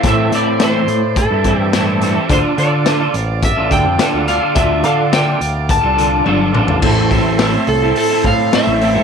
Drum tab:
CC |----------------|----------------|----------------|x---------------|
HH |x-x-x-x-x-x-x-x-|x-x-x-x-x-x-x-x-|x-x-x-x-x-x-----|--o-o-o-o-o-o-o-|
SD |----o-------o-o-|----o-------o---|----o-----------|----o-------o---|
T1 |----------------|----------------|------------o---|----------------|
T2 |----------------|----------------|--------------o-|----------------|
FT |----------------|----------------|---------------o|----------------|
BD |o-------o-o-----|o-------o-o-----|o-------o-------|o-o-------o-----|